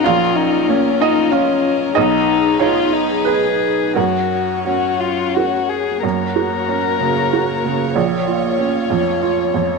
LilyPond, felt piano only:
\new Staff \with { instrumentName = "Felt piano" } { \time 3/4 \key fis \major \tempo 4 = 94 << { eis''4. dis''8 eis''8 r8 | dis''4 cis''4 b'4 | ais'2 r4 | r2. |
r2. | } \\ { ais,,4 ais4 <eis' cis''>4 | b,,4 dis'4 gis'4 | fis,4 cis'4 <fis' ais'>4 | fis,8 fis'8 cis'8 cis8 fis'8 cis8 |
ais,,8 eis'8 cis'8 eis,8 eis'8 eis,8 | } >> }